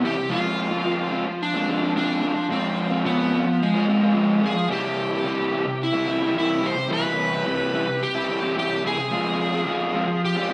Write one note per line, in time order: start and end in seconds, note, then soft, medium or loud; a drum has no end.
0.00 0.28 C3 loud
0.00 0.16 E3 medium
0.00 0.16 G3 medium
0.04 0.17 C4 medium
0.04 0.16 E4 medium
0.04 0.32 G4 medium
0.17 muted overdriven electric guitar stroke medium
0.30 0.84 F3 loud
0.30 0.73 G#3 loud
0.30 0.72 C4 loud
0.30 1.44 F4 loud
0.30 0.70 F4 loud
0.71 0.85 G#3 medium
0.71 0.86 C4 medium
0.71 0.86 F4 medium
0.85 1.10 F3 loud
0.85 1.11 G#3 loud
0.85 1.12 C4 loud
0.85 1.12 F4 loud
1.11 1.53 F3 medium
1.11 1.26 G#3 medium
1.11 1.27 C4 medium
1.11 1.25 F4 medium
1.26 muted overdriven electric guitar stroke medium
1.43 1.96 D4 loud
1.54 1.68 G#3 medium
1.54 1.69 C4 medium
1.54 1.69 F4 medium
1.68 1.95 F3 medium
1.68 1.82 G#3 medium
1.68 1.82 C4 medium
1.68 1.80 F4 medium
1.81 1.95 G#3 medium
1.81 1.97 C4 medium
1.81 1.97 F4 medium
1.96 2.21 F3 loud
1.96 2.21 G#3 loud
1.96 2.23 C4 loud
1.96 2.47 D4 loud
1.96 2.23 F4 loud
2.22 2.48 F3 medium
2.22 2.35 G#3 medium
2.22 2.36 C4 medium
2.22 2.34 F4 medium
2.36 muted overdriven electric guitar stroke medium
2.49 3.03 F3 loud
2.49 2.91 G#3 loud
2.49 2.91 C4 loud
2.49 3.06 C4 medium
2.49 2.89 F4 loud
2.90 3.04 G#3 medium
2.90 3.05 C4 medium
2.90 3.05 F4 medium
3.04 3.31 F3 loud
3.04 3.32 G#3 loud
3.04 3.62 B3 medium
3.04 3.34 C4 loud
3.04 3.33 F4 loud
3.32 3.74 F3 medium
3.32 3.45 G#3 medium
3.32 3.46 C4 medium
3.32 3.44 F4 medium
3.46 muted overdriven electric guitar stroke medium
3.62 4.40 G#3 loud
3.74 3.87 G#3 medium
3.74 3.88 C4 medium
3.74 3.88 F4 medium
3.87 4.13 F3 medium
3.87 4.02 G#3 medium
3.87 4.01 C4 medium
3.87 4.00 F4 medium
4.01 4.13 G#3 medium
4.01 4.14 C4 medium
4.01 4.14 F4 medium
4.14 4.40 F3 loud
4.14 4.40 G#3 loud
4.14 4.42 C4 loud
4.14 4.42 F4 loud
4.41 4.67 F3 medium
4.41 4.54 G#3 medium
4.41 4.55 C4 medium
4.41 4.54 F4 medium
4.46 4.72 G#4 loud
4.55 muted overdriven electric guitar stroke medium
4.68 5.24 C3 medium
4.68 5.25 E3 loud
4.68 5.13 G3 medium
4.68 5.12 C4 loud
4.68 5.11 E4 loud
4.68 5.85 G4 loud
5.11 5.25 G3 medium
5.11 5.26 C4 medium
5.11 5.26 E4 medium
5.24 6.33 C3 medium
5.24 5.52 E3 medium
5.24 5.53 G3 loud
5.24 5.53 C4 loud
5.24 5.54 E4 loud
5.52 5.65 E3 medium
5.52 5.65 G3 medium
5.52 5.66 C4 medium
5.52 5.65 E4 medium
5.66 muted overdriven electric guitar stroke medium
5.83 6.38 E4 loud
5.93 6.06 G3 medium
5.93 6.07 C4 medium
5.93 6.07 E4 medium
6.06 6.33 E3 medium
6.06 6.21 G3 medium
6.06 6.21 C4 medium
6.06 6.19 E4 medium
6.20 6.33 G3 medium
6.20 6.35 C4 medium
6.20 6.35 E4 medium
6.34 6.88 C3 loud
6.34 6.60 E3 loud
6.34 6.61 G3 loud
6.34 6.62 C4 loud
6.34 6.62 E4 loud
6.39 6.66 E4 loud
6.61 6.76 E3 medium
6.61 6.76 G3 medium
6.61 6.76 C4 medium
6.61 6.75 E4 medium
6.66 6.93 C5 loud
6.76 muted overdriven electric guitar stroke medium
6.89 7.44 C3 loud
6.89 7.45 E3 loud
6.89 7.32 G3 loud
6.89 7.32 C4 loud
6.89 7.30 E4 loud
6.89 8.06 B4 loud
7.31 7.45 G3 medium
7.31 7.47 C4 medium
7.31 7.46 E4 medium
7.45 8.01 C3 loud
7.45 7.72 E3 loud
7.45 7.72 G3 loud
7.45 7.74 C4 loud
7.45 7.74 E4 loud
7.73 7.87 E3 medium
7.73 7.86 G3 medium
7.73 7.87 C4 medium
7.73 7.86 E4 medium
7.87 muted overdriven electric guitar stroke medium
8.03 8.58 G4 loud
8.15 8.28 G3 medium
8.15 8.30 C4 medium
8.15 8.30 E4 medium
8.28 8.55 E3 medium
8.28 8.43 G3 medium
8.28 8.43 C4 medium
8.28 8.41 E4 medium
8.42 8.56 G3 medium
8.42 8.57 C4 medium
8.42 8.56 E4 medium
8.56 9.10 C3 loud
8.56 8.82 E3 loud
8.56 8.83 G3 loud
8.56 8.84 C4 loud
8.56 8.83 E4 loud
8.56 8.83 G4 loud
8.83 8.98 E3 medium
8.83 8.97 G3 medium
8.83 8.98 C4 medium
8.83 8.97 E4 medium
8.83 10.25 G#4 loud
8.98 muted overdriven electric guitar stroke medium
9.11 9.66 F3 medium
9.11 9.54 G#3 loud
9.11 9.53 C4 loud
9.11 9.52 F4 loud
9.53 9.66 G#3 medium
9.53 9.67 C4 medium
9.53 9.68 F4 medium
9.66 9.93 F3 loud
9.66 9.94 G#3 loud
9.66 9.95 C4 loud
9.66 9.95 F4 loud
9.94 10.36 F3 medium
9.94 10.07 G#3 medium
9.94 10.07 C4 loud
9.94 10.06 F4 loud
10.08 muted overdriven electric guitar stroke medium
10.25 10.53 G4 loud
10.35 10.49 G#3 medium
10.35 10.50 C4 medium
10.35 10.50 F4 medium
10.50 10.53 F3 medium
10.50 10.53 G#3 medium